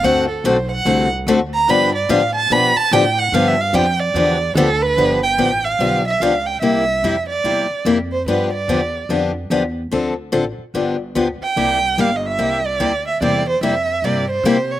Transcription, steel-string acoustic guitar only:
X:1
M:4/4
L:1/8
Q:"Swing" 1/4=146
K:Gmix
V:1 name="Steel-string acoustic guitar"
[D,A,C^FA] z [D,A,CFA] z [D,A,CFA] z [D,A,CFA] z | [D,F,B,DG] z [D,F,B,DG] z [D,F,B,DG] z [D,F,B,DG] z | [D,F,B,DG] z [D,F,B,DG] z [D,F,B,DG] z [D,F,B,DG] z | [D,F,B,DG] z [D,F,B,DG] z [D,F,B,DG] z [D,F,B,DG] z |
[C,G,_B,EG] z [C,G,B,EG] z [C,G,B,EG] z [C,G,B,EG] z | [D,F,B,DG] z [D,F,B,DG] z [D,F,B,DG] z [D,F,B,DG] z | [D,F,CDA] z [D,F,CDA] z [D,F,B,DG] z [D,F,B,DG] z | [C,G,_B,EG] z [C,G,B,EG] z [C,G,B,EG] z [C,G,B,EG] z |
[C,G,_B,EG] z [C,G,B,EG] z [C,G,B,EG] z [C,G,B,EG] z |]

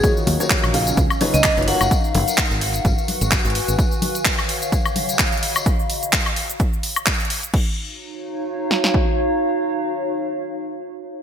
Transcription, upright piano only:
X:1
M:4/4
L:1/16
Q:"Swing 16ths" 1/4=128
K:Ebm
V:1 name="Upright piano"
[E,EFGd]3 [E,EFGd]3 [D,EFGf]2 z2 [D,EFcd] z2 [EFcd] [G,FGBd] z | z16 | z16 | z16 |
z16 | z16 |]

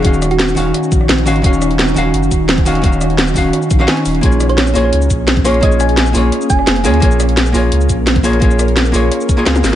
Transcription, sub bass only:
X:1
M:4/4
L:1/8
Q:1/4=172
K:Ebm
V:1 name="Sub bass" clef=bass
E,,,3 E,,, z B,,, B,,, A,,, | E,,,3 E,,, G,,, E,,,3 | E,,,3 E,,, z B,,, z E,,, | B,,,3 B,,, D,, B,,,3 |
B,,,3 B,,, z F,,, F,,, E,, | B,,,3 B,,, D,, B,,,3 | B,,,3 B,,, z2 D,, A,,, |]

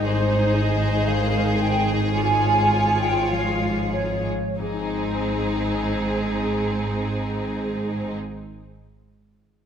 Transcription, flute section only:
X:1
M:4/4
L:1/8
Q:1/4=94
K:Ab
V:1 name="Flute section"
c2 e2 f2 g2 | a3 g f2 d2 | A8- | A8 |]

